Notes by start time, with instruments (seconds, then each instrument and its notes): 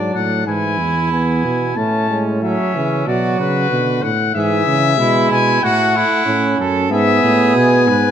Already playing: bass trombone G#2, trombone F#3, trumpet D4 D5
0.15 bass trombone A2, trumpet F#5
0.46 bass trombone G#2, trombone E3, trumpet E4 G#5
0.78 bass trombone E2
1.12 trombone B3, trumpet G#5
1.44 bass trombone B2
1.76 bass trombone A2, trombone A3, trumpet C#4 A5
2.10 trombone G#3
2.42 trombone F#3, trumpet C#4 E5
2.74 bass trombone C#3, trombone E3
3.07 bass trombone B2, trombone F#3, trumpet F#4 D5
3.39 bass trombone C#3, trumpet B4
3.70 bass trombone B2, trombone D3
4.02 bass trombone A2, trumpet F#5
4.34 bass trombone G#2, trombone E3, trumpet G#4 E5
4.66 bass trombone C#3
4.97 bass trombone B2, trombone G#3, trumpet E4
5.31 bass trombone B2, trumpet G#5
5.63 bass trombone A2, trombone A3, trumpet F#4 F#5
5.96 trumpet E4
6.26 bass trombone A2, trombone C#4
6.59 bass trombone F#2, trumpet A4
6.90 bass trombone G#2, trombone B3, trumpet G#4 E5
7.24 bass trombone A2
7.55 bass trombone B2, trumpet G#5
7.87 bass trombone G#2, trumpet B4